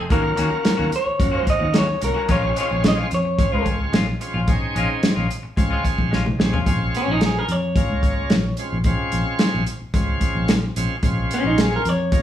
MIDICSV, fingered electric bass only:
0, 0, Header, 1, 3, 480
1, 0, Start_track
1, 0, Key_signature, -5, "minor"
1, 0, Tempo, 545951
1, 95, Time_signature, 4, 2, 24, 8
1, 10746, End_track
2, 0, Start_track
2, 0, Title_t, "Fingered electric bass"
2, 0, Program_c, 0, 33
2, 91, Note_on_c, 0, 39, 101
2, 280, Note_off_c, 0, 39, 0
2, 332, Note_on_c, 0, 39, 86
2, 428, Note_off_c, 0, 39, 0
2, 696, Note_on_c, 0, 39, 86
2, 788, Note_off_c, 0, 39, 0
2, 1050, Note_on_c, 0, 42, 80
2, 1239, Note_off_c, 0, 42, 0
2, 1415, Note_on_c, 0, 39, 84
2, 1695, Note_off_c, 0, 39, 0
2, 1779, Note_on_c, 0, 36, 94
2, 1873, Note_off_c, 0, 36, 0
2, 2016, Note_on_c, 0, 34, 100
2, 2203, Note_off_c, 0, 34, 0
2, 2383, Note_on_c, 0, 34, 75
2, 2660, Note_off_c, 0, 34, 0
2, 2743, Note_on_c, 0, 41, 80
2, 3022, Note_off_c, 0, 41, 0
2, 3105, Note_on_c, 0, 37, 92
2, 3382, Note_off_c, 0, 37, 0
2, 3452, Note_on_c, 0, 34, 77
2, 3641, Note_off_c, 0, 34, 0
2, 3815, Note_on_c, 0, 34, 86
2, 4003, Note_off_c, 0, 34, 0
2, 4183, Note_on_c, 0, 34, 87
2, 4275, Note_off_c, 0, 34, 0
2, 4544, Note_on_c, 0, 34, 84
2, 4633, Note_off_c, 0, 34, 0
2, 4902, Note_on_c, 0, 37, 78
2, 5087, Note_off_c, 0, 37, 0
2, 5264, Note_on_c, 0, 34, 78
2, 5542, Note_off_c, 0, 34, 0
2, 5624, Note_on_c, 0, 34, 89
2, 5716, Note_off_c, 0, 34, 0
2, 5862, Note_on_c, 0, 34, 97
2, 6048, Note_off_c, 0, 34, 0
2, 6225, Note_on_c, 0, 34, 75
2, 6503, Note_off_c, 0, 34, 0
2, 6580, Note_on_c, 0, 41, 80
2, 6862, Note_off_c, 0, 41, 0
2, 6942, Note_on_c, 0, 37, 84
2, 7221, Note_off_c, 0, 37, 0
2, 7301, Note_on_c, 0, 34, 77
2, 7488, Note_off_c, 0, 34, 0
2, 7671, Note_on_c, 0, 34, 79
2, 7855, Note_off_c, 0, 34, 0
2, 8024, Note_on_c, 0, 34, 90
2, 8117, Note_off_c, 0, 34, 0
2, 8391, Note_on_c, 0, 34, 92
2, 8480, Note_off_c, 0, 34, 0
2, 8742, Note_on_c, 0, 37, 83
2, 8928, Note_off_c, 0, 37, 0
2, 9101, Note_on_c, 0, 34, 72
2, 9381, Note_off_c, 0, 34, 0
2, 9464, Note_on_c, 0, 34, 91
2, 9558, Note_off_c, 0, 34, 0
2, 9699, Note_on_c, 0, 34, 91
2, 9886, Note_off_c, 0, 34, 0
2, 10060, Note_on_c, 0, 34, 85
2, 10339, Note_off_c, 0, 34, 0
2, 10422, Note_on_c, 0, 41, 82
2, 10702, Note_off_c, 0, 41, 0
2, 10746, End_track
3, 0, Start_track
3, 0, Title_t, "Muted fingered electric bass strokes"
3, 578, Note_on_c, 9, 29, 36
3, 666, Note_off_c, 9, 29, 0
3, 934, Note_on_c, 9, 29, 33
3, 1022, Note_off_c, 9, 29, 0
3, 4421, Note_on_c, 9, 29, 37
3, 4509, Note_off_c, 9, 29, 0
3, 4786, Note_on_c, 9, 29, 31
3, 4874, Note_off_c, 9, 29, 0
3, 5141, Note_on_c, 9, 29, 32
3, 5229, Note_off_c, 9, 29, 0
3, 8631, Note_on_c, 9, 29, 31
3, 8719, Note_off_c, 9, 29, 0
3, 10746, End_track
0, 0, End_of_file